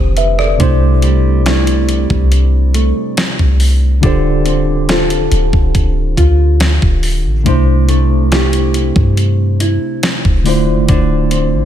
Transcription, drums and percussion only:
0.17 closed hi-hat medium
0.39 cross-stick medium
0.60 kick loud
0.60 closed hi-hat medium
1.02 closed hi-hat medium
1.46 snare loud
1.46 closed hi-hat medium
1.67 closed hi-hat medium
1.89 closed hi-hat medium
2.10 kick medium
2.32 closed hi-hat medium
2.74 closed hi-hat medium
3.17 snare loud
3.17 closed hi-hat medium
3.39 kick medium
3.60 open hi-hat medium
4.03 kick loud
4.03 closed hi-hat medium
4.46 closed hi-hat medium
4.89 snare loud
4.89 closed hi-hat medium
5.10 closed hi-hat medium
5.32 closed hi-hat medium
5.53 kick loud
5.75 kick medium
5.75 closed hi-hat medium
6.17 kick medium
6.17 closed hi-hat medium
6.60 snare loud
6.60 closed hi-hat medium
6.82 kick medium
7.03 open hi-hat medium
7.46 kick loud
7.46 closed hi-hat medium
7.89 closed hi-hat medium
8.32 snare loud
8.32 closed hi-hat medium
8.53 closed hi-hat medium
8.74 closed hi-hat medium
8.96 kick loud
9.17 closed hi-hat medium
9.60 closed hi-hat medium
10.03 snare loud
10.03 closed hi-hat medium
10.25 kick medium
10.46 open hi-hat medium
10.88 kick loud
10.88 closed hi-hat medium
11.31 closed hi-hat medium

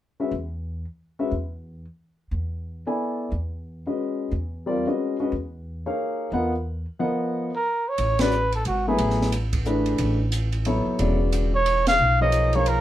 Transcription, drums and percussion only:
7.98 ride soft
8.19 snare medium
8.19 ride medium
8.31 hi-hat pedal soft
8.52 ride soft
8.65 ride soft
8.98 ride medium
9.10 snare soft
9.22 snare soft
9.32 hi-hat pedal soft
9.32 ride medium
9.53 kick soft
9.53 ride medium
9.65 hi-hat pedal soft
9.86 ride soft
9.98 ride medium
10.32 hi-hat pedal medium
10.32 ride medium
10.52 ride soft
10.65 ride soft
10.99 ride medium
11.32 hi-hat pedal soft
11.32 ride medium
11.66 ride medium
11.87 snare medium
11.87 ride medium
12.32 hi-hat pedal medium
12.32 ride soft
12.53 ride soft
12.66 ride medium

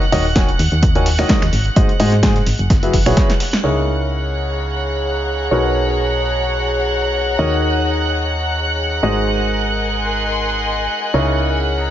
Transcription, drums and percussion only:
0.02 snare soft
0.12 closed hi-hat medium
0.12 open hi-hat loud
0.36 kick loud
0.36 snare loud
0.36 closed hi-hat medium
0.49 closed hi-hat soft
0.59 closed hi-hat medium
0.59 open hi-hat medium
0.72 snare soft
0.72 closed hi-hat medium
0.83 kick loud
0.83 closed hi-hat medium
0.95 closed hi-hat medium
1.06 snare loud
1.06 closed hi-hat medium
1.06 open hi-hat loud
1.18 finger snap medium
1.18 snare soft
1.18 snare loud
1.18 closed hi-hat medium
1.29 kick loud
1.29 snare loud
1.29 closed hi-hat medium
1.42 finger snap medium
1.42 snare loud
1.42 closed hi-hat medium
1.53 closed hi-hat medium
1.53 open hi-hat medium
1.66 snare medium
1.66 closed hi-hat soft
1.76 kick loud
1.76 closed hi-hat medium
1.89 closed hi-hat soft
2.00 closed hi-hat medium
2.00 open hi-hat loud
2.12 snare soft
2.12 closed hi-hat soft
2.23 kick loud
2.23 snare loud
2.23 closed hi-hat medium
2.36 snare medium
2.36 closed hi-hat soft
2.46 snare medium
2.46 closed hi-hat medium
2.46 open hi-hat medium
2.59 closed hi-hat medium
2.70 kick loud
2.70 snare loud
2.70 closed hi-hat medium
2.83 snare soft
2.83 closed hi-hat medium
2.93 kick medium
2.93 closed hi-hat medium
2.93 open hi-hat loud
3.06 finger snap medium
3.06 snare loud
3.06 closed hi-hat medium
3.17 kick loud
3.17 snare soft
3.17 snare medium
3.17 closed hi-hat medium
3.30 snare medium
3.30 closed hi-hat medium
3.30 closed hi-hat soft
3.40 snare loud
3.40 closed hi-hat medium
3.40 open hi-hat medium
3.53 snare soft
3.53 snare medium
3.53 closed hi-hat soft

